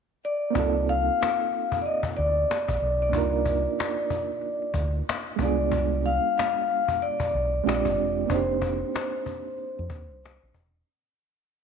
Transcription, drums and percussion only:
0.55 cajon bass medium
0.76 cajon slap soft
0.86 cajon slap soft
1.06 cajon slap soft
1.23 cajon slap medium
1.38 cajon slap soft
1.51 cajon slap soft
1.72 cajon bass medium
1.72 cajon slap soft
1.84 cajon slap soft
2.03 cajon bass medium
2.13 cajon slap soft
2.36 cajon slap soft
2.51 cajon slap medium
2.68 cajon bass medium
2.80 cajon slap soft
2.99 cajon slap soft
3.13 cajon bass medium
3.33 cajon slap soft
3.45 cajon bass medium
3.63 cajon slap soft
3.80 cajon slap medium
3.96 cajon slap soft
4.10 cajon bass medium
4.29 cajon slap soft
4.32 cajon slap soft
4.41 cajon slap soft
4.62 cajon slap soft
4.74 cajon bass medium
4.94 cajon slap soft
5.09 cajon slap medium
5.28 cajon slap soft
5.39 cajon bass medium
5.58 cajon slap soft
5.72 cajon bass medium
5.92 cajon slap soft
6.03 cajon slap soft
6.23 cajon slap soft
6.39 cajon slap medium
6.56 cajon slap soft
6.68 cajon slap soft
6.88 cajon bass medium
6.88 cajon slap soft
7.01 cajon slap soft
7.20 cajon bass medium
7.31 cajon slap soft
7.53 cajon slap soft
7.69 cajon slap medium
7.85 cajon bass medium
7.98 cajon slap soft
8.17 cajon slap soft
8.30 cajon bass medium
8.51 cajon slap soft
8.62 cajon bass medium
8.80 cajon slap soft
8.96 cajon slap loud
9.12 cajon slap soft
9.26 cajon bass medium
9.45 cajon slap soft
9.48 cajon slap soft
9.58 cajon slap soft
9.78 cajon slap soft
9.90 cajon bass medium
10.11 cajon slap soft
10.26 cajon slap medium
10.43 cajon slap soft
10.54 cajon bass medium
10.54 cajon slap soft
10.73 cajon slap soft

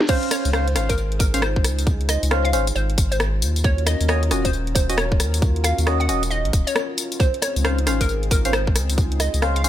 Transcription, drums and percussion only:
0.00 snare medium
0.09 kick loud
0.09 crash loud
0.09 tambourine soft
0.23 closed hi-hat soft
0.31 cross-stick medium
0.31 open hi-hat loud
0.31 tambourine medium
0.45 open hi-hat medium
0.45 tambourine soft
0.53 cross-stick loud
0.53 tambourine soft
0.68 closed hi-hat soft
0.76 cross-stick medium
0.76 open hi-hat loud
0.76 tambourine medium
0.90 kick medium
0.90 closed hi-hat medium
0.90 tambourine soft
0.98 tambourine soft
1.12 closed hi-hat soft
1.20 kick loud
1.20 open hi-hat loud
1.20 tambourine medium
1.34 closed hi-hat medium
1.34 tambourine soft
1.42 cross-stick loud
1.42 tambourine soft
1.56 kick loud
1.64 cross-stick medium
1.64 open hi-hat loud
1.64 tambourine medium
1.79 closed hi-hat medium
1.79 tambourine soft
1.87 kick loud
1.87 tambourine soft
2.01 closed hi-hat soft
2.09 cross-stick medium
2.09 open hi-hat loud
2.09 tambourine medium
2.23 open hi-hat medium
2.23 tambourine soft
2.31 cross-stick loud
2.31 tambourine soft
2.45 closed hi-hat soft
2.53 open hi-hat loud
2.53 tambourine medium
2.67 closed hi-hat medium
2.67 tambourine soft
2.76 tambourine soft
2.90 closed hi-hat soft
2.98 kick loud
2.98 open hi-hat loud
2.98 tambourine medium
3.12 closed hi-hat medium
3.12 tambourine soft
3.20 cross-stick loud
3.20 tambourine soft
3.42 open hi-hat loud
3.42 tambourine medium
3.56 open hi-hat medium
3.56 tambourine soft
3.64 kick loud
3.64 tambourine soft
3.78 closed hi-hat soft
3.87 cross-stick medium
3.87 open hi-hat loud
3.87 tambourine medium
4.01 open hi-hat medium
4.01 tambourine soft
4.09 cross-stick loud
4.09 tambourine soft
4.23 closed hi-hat soft
4.31 cross-stick medium
4.31 open hi-hat loud
4.31 tambourine medium
4.45 kick medium
4.45 closed hi-hat medium
4.45 tambourine soft
4.53 tambourine soft
4.67 closed hi-hat soft
4.75 kick loud
4.75 open hi-hat loud
4.75 tambourine medium
4.90 closed hi-hat medium
4.90 tambourine soft
4.98 cross-stick loud
4.98 tambourine soft
5.12 kick loud
5.20 cross-stick medium
5.20 open hi-hat loud
5.20 tambourine medium
5.34 closed hi-hat medium
5.34 tambourine soft
5.42 kick loud
5.42 tambourine soft
5.56 closed hi-hat soft
5.64 cross-stick medium
5.64 open hi-hat loud
5.64 tambourine medium
5.78 open hi-hat medium
5.78 tambourine soft
5.87 cross-stick loud
5.87 tambourine soft
6.01 closed hi-hat soft
6.09 open hi-hat loud
6.09 tambourine medium
6.23 closed hi-hat medium
6.23 tambourine soft
6.31 tambourine soft
6.45 closed hi-hat soft
6.53 kick loud
6.53 open hi-hat loud
6.53 tambourine medium
6.67 closed hi-hat medium
6.67 tambourine soft
6.76 cross-stick loud
6.76 tambourine soft
6.98 open hi-hat loud
6.98 tambourine medium
7.12 open hi-hat medium
7.12 tambourine soft
7.20 kick loud
7.20 tambourine soft
7.34 closed hi-hat soft
7.42 cross-stick medium
7.42 open hi-hat loud
7.42 tambourine medium
7.56 open hi-hat medium
7.56 tambourine soft
7.65 cross-stick loud
7.65 tambourine soft
7.78 closed hi-hat medium
7.87 cross-stick medium
7.87 open hi-hat loud
7.87 tambourine medium
8.01 kick medium
8.01 closed hi-hat medium
8.01 tambourine soft
8.09 tambourine soft
8.23 closed hi-hat soft
8.31 kick loud
8.31 open hi-hat loud
8.31 tambourine medium
8.45 closed hi-hat medium
8.45 tambourine soft
8.53 cross-stick loud
8.53 tambourine soft
8.67 kick loud
8.76 cross-stick medium
8.76 open hi-hat loud
8.76 tambourine medium
8.90 closed hi-hat medium
8.90 tambourine soft
8.98 kick loud
8.98 tambourine soft
9.12 closed hi-hat soft
9.20 cross-stick medium
9.20 open hi-hat loud
9.20 tambourine medium
9.34 open hi-hat medium
9.34 tambourine soft
9.42 cross-stick loud
9.42 tambourine soft
9.56 closed hi-hat medium
9.64 open hi-hat loud
9.64 tambourine medium

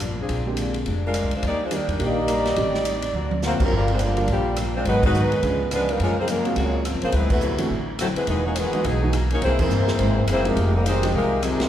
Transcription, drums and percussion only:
0.00 cross-stick medium
0.00 hi-hat pedal medium
0.00 ride medium
0.29 kick soft
0.29 ride medium
0.57 hi-hat pedal medium
0.57 ride medium
0.74 ride soft
0.86 kick soft
0.86 ride medium
1.14 cross-stick medium
1.14 hi-hat pedal medium
1.14 ride medium
1.31 ride soft
1.43 kick soft
1.43 ride medium
1.71 hi-hat pedal medium
1.71 ride medium
1.89 ride soft
2.00 kick soft
2.00 ride medium
2.28 cross-stick medium
2.28 hi-hat pedal medium
2.28 ride medium
2.46 snare soft
2.46 ride soft
2.56 kick soft
2.56 ride medium
2.74 snare soft
2.85 hi-hat pedal medium
2.85 ride medium
3.02 ride medium
3.14 high tom soft
3.31 high tom medium
3.42 snare medium
3.42 hi-hat pedal medium
3.60 kick medium
3.60 crash medium
3.71 kick soft
3.88 ride soft
3.99 hi-hat pedal medium
3.99 ride medium
4.17 ride soft
4.28 kick soft
4.28 ride medium
4.56 cross-stick medium
4.56 hi-hat pedal medium
4.56 ride medium
4.85 kick soft
4.85 ride medium
5.03 kick medium
5.03 crash medium
5.14 hi-hat pedal medium
5.32 ride soft
5.43 kick soft
5.43 ride medium
5.71 cross-stick medium
5.71 hi-hat pedal medium
5.71 ride medium
5.89 ride soft
6.00 kick soft
6.00 ride medium
6.28 hi-hat pedal medium
6.28 ride medium
6.45 ride soft
6.56 kick soft
6.56 ride medium
6.85 cross-stick medium
6.85 hi-hat pedal soft
6.85 ride medium
7.02 ride soft
7.12 kick soft
7.12 ride medium
7.30 kick medium
7.30 crash medium
7.41 hi-hat pedal soft
7.58 ride medium
7.70 kick soft
7.99 cross-stick medium
7.99 hi-hat pedal medium
7.99 ride medium
8.16 ride soft
8.27 kick soft
8.27 ride medium
8.56 hi-hat pedal medium
8.56 ride medium
8.73 ride soft
8.84 kick soft
8.84 ride medium
9.13 cross-stick medium
9.13 hi-hat pedal soft
9.13 ride medium
9.30 ride soft
9.42 kick soft
9.42 ride medium
9.59 kick medium
9.59 crash medium
9.70 hi-hat pedal medium
9.88 snare medium
9.99 kick soft
9.99 ride medium
10.27 cross-stick medium
10.27 hi-hat pedal medium
10.27 ride medium
10.45 ride soft
10.57 kick soft
10.57 ride medium
10.86 hi-hat pedal medium
10.86 ride medium
11.03 ride medium
11.14 kick soft
11.43 cross-stick medium
11.43 hi-hat pedal medium
11.43 ride medium
11.60 snare medium
11.60 ride soft

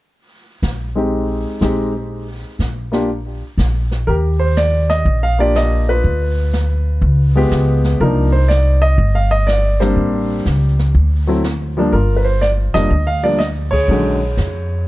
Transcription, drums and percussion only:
0.14 brush sweep soft
0.62 snare soft
0.62 hi-hat pedal soft
1.12 brush sweep soft
1.61 snare soft
1.61 hi-hat pedal soft
2.11 brush sweep soft
2.60 snare soft
2.60 hi-hat pedal soft
2.93 snare soft
3.10 brush sweep soft
3.59 snare soft
3.59 hi-hat pedal soft
3.91 snare soft
4.07 brush sweep soft
4.57 snare medium
4.57 hi-hat pedal medium
4.90 snare soft
5.06 brush sweep soft
5.55 snare medium
5.55 hi-hat pedal medium
6.04 brush sweep soft
6.53 snare soft
6.53 hi-hat pedal soft
7.02 brush sweep soft
7.51 snare medium
7.51 hi-hat pedal medium
7.84 snare soft
8.01 brush sweep soft
8.50 snare medium
8.50 hi-hat pedal soft
8.99 brush sweep soft
9.48 snare medium
9.48 hi-hat pedal medium
9.81 snare soft
9.97 brush sweep soft
10.46 snare soft
10.46 hi-hat pedal soft
10.79 snare soft
10.95 brush sweep soft
11.44 snare medium
11.44 hi-hat pedal medium
11.93 brush sweep soft
12.42 snare medium
12.42 hi-hat pedal soft
12.75 snare soft
12.92 brush sweep soft
13.40 snare medium
13.40 hi-hat pedal medium
13.72 kick medium
13.72 ride medium
13.89 brush sweep soft
14.38 snare soft
14.38 hi-hat pedal soft

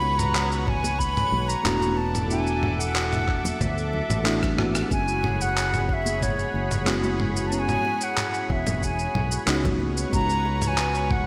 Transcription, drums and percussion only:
0.02 high bongo medium
0.19 mid tom medium
0.19 shaker medium
0.35 clap loud
0.35 shaker medium
0.52 shaker soft
0.67 kick loud
0.67 mid tom medium
0.84 high bongo medium
0.84 high conga medium
0.84 shaker medium
1.00 kick medium
1.00 shaker medium
1.17 mid tom medium
1.17 shaker soft
1.33 high conga medium
1.50 shaker medium
1.66 clap loud
1.66 mid tom medium
1.66 shaker medium
1.82 high conga medium
1.82 shaker soft
2.15 mid tom medium
2.15 shaker medium
2.31 shaker medium
2.47 shaker soft
2.63 mid tom medium
2.63 high bongo medium
2.80 shaker medium
2.96 clap loud
2.96 shaker soft
3.13 mid tom medium
3.13 shaker soft
3.28 kick loud
3.28 clap soft
3.45 high bongo medium
3.45 high conga medium
3.45 low conga medium
3.45 shaker medium
3.61 kick medium
3.61 mid tom medium
3.61 shaker medium
3.78 shaker soft
3.93 low conga medium
4.10 mid tom medium
4.10 shaker medium
4.26 clap loud
4.26 shaker medium
4.43 kick loud
4.43 cross-stick medium
4.43 low conga medium
4.43 shaker soft
4.58 cross-stick medium
4.58 mid tom medium
4.58 high conga medium
4.75 cross-stick medium
4.75 shaker medium
4.91 kick loud
4.91 shaker medium
5.08 shaker soft
5.24 mid tom medium
5.24 high bongo medium
5.41 shaker medium
5.57 clap loud
5.57 shaker medium
5.74 mid tom medium
5.74 shaker soft
5.89 kick loud
6.06 high bongo medium
6.06 high conga medium
6.06 shaker medium
6.22 kick medium
6.22 mid tom medium
6.22 shaker medium
6.39 shaker soft
6.55 high conga medium
6.71 mid tom medium
6.71 shaker medium
6.87 clap loud
6.87 shaker medium
7.03 high conga medium
7.03 shaker soft
7.20 mid tom medium
7.36 shaker medium
7.52 shaker medium
7.69 mid tom medium
7.69 shaker soft
7.85 high bongo medium
8.01 shaker medium
8.17 clap loud
8.17 mid tom medium
8.17 shaker medium
8.34 shaker soft
8.50 kick loud
8.67 mid tom medium
8.67 high bongo medium
8.67 high conga medium
8.67 low conga medium
8.67 shaker medium
8.83 kick medium
8.83 shaker medium
8.99 shaker soft
9.15 mid tom medium
9.15 low conga medium
9.31 shaker medium
9.48 clap loud
9.48 shaker medium
9.64 kick loud
9.64 mid tom medium
9.64 low conga medium
9.64 shaker soft
9.80 high conga medium
9.97 shaker medium
10.13 kick loud
10.13 mid tom medium
10.13 shaker medium
10.30 shaker soft
10.45 high bongo medium
10.62 mid tom medium
10.62 shaker medium
10.78 clap loud
10.78 shaker medium
10.95 shaker soft
11.11 kick loud
11.11 mid tom medium

